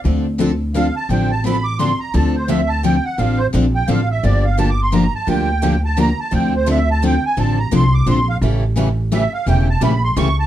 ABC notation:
X:1
M:3/4
L:1/16
Q:"Swing" 1/4=172
K:Dm
V:1 name="Accordion"
z8 f2 a2 | g2 a2 =b2 d'2 c'2 _b2 | a2 c2 e2 a2 g2 ^f2 | f2 c2 z2 g2 f2 e2 |
d2 f2 (3a2 d'2 c'2 b2 a2 | g6 a2 b2 a2 | g2 c2 e2 a2 g2 ^g2 | a2 b2 c'2 d'2 c'2 f2 |
z8 e2 f2 | g2 a2 =b2 c'2 ^c'2 a2 |]
V:2 name="Steel-string acoustic guitar"
[D,F,CDA]2 z2 [D,F,CDA] z3 [D,F,CDA] z3 | [D,F,CDA]2 z2 [D,F,CDA] z3 [D,F,CDA] z3 | [D,F,CDA]2 z2 [D,F,CDA] z3 [D,F,CDA] z3 | [D,F,CDA]2 z2 [D,F,CDA] z3 [D,F,CDA] z3 |
[D,F,B,DG]2 z2 [D,F,B,DG] z3 [D,F,B,DG] z3 | [D,F,B,DG]2 z2 [D,F,B,DG] z3 [D,F,B,DG] z3 | [D,F,CDA]2 z2 [D,F,CDA] z3 [D,F,CDA] z3 | [D,F,CDA]2 z2 [D,F,CDA] z3 [D,F,CDA] z3 |
[^C,E,A,^CG]2 z2 [C,E,A,CG] z3 [C,E,A,CG] z3 | [^C,E,A,^CG]2 z2 [C,E,A,CG] z3 [C,E,A,CG] z3 |]
V:3 name="Steel-string acoustic guitar"
[D,F,CDA]2 z2 [D,F,CDA] z3 [D,F,CDA] z3 | [D,F,CDA]2 z2 [D,F,CDA] z3 [D,F,CDA] z3 | [D,F,CDA]2 z2 [D,F,CDA] z3 [D,F,CDA] z3 | [D,F,CDA]2 z2 [D,F,CDA] z3 [D,F,CDA] z3 |
[D,F,B,DG]2 z2 [D,F,B,DG] z3 [D,F,B,DG] z3 | [D,F,B,DG]2 z2 [D,F,B,DG] z3 [D,F,B,DG] z3 | [D,F,CDA]2 z2 [D,F,CDA] z3 [D,F,CDA] z3 | [D,F,CDA]2 z2 [D,F,CDA] z3 [D,F,CDA] z3 |
[E,G,^CEA]2 z2 [E,G,CEA] z3 [E,G,CEA] z3 | [E,G,^CEA]2 z2 [E,G,CEA] z3 [E,G,CEA] z3 |]
V:4 name="Upright bass" clef=bass
D,,12 | A,,,12 | D,,12 | A,,,4 B,,,4 A,,,4 |
G,,,12 | D,,12 | D,,12 | A,,,4 C,,4 B,,,4 |
A,,,12 | E,,,4 B,,,4 ^C,,4 |]